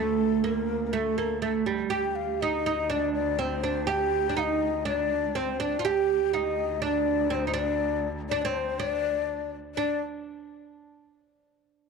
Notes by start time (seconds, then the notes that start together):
Already playing: D2 A3 A4
0.44 A#3 A#4
0.87 A#4
0.93 A3 A4
1.18 A#3
1.42 A3 A4
1.66 G3
1.90 D2 G4 G5
2.16 F5
2.41 D#4 D#5
2.66 D#4
2.90 D4 D5
3.14 D5
3.39 C4 C5
3.64 D4
3.87 G4 G5
4.29 D4
4.37 D#4 F5
4.43 D#5
4.85 D4 D5
5.35 C4 C5
5.60 D4 D5
5.79 F4
5.85 D2 G4 A5
5.91 G5
6.33 D#4 D#5
6.82 D4 D5
7.30 C4 C5
7.47 D#4
7.54 D4
7.59 D5
8.29 D4 D5
8.42 C4 C5
8.79 D4 D5
9.75 D4 D5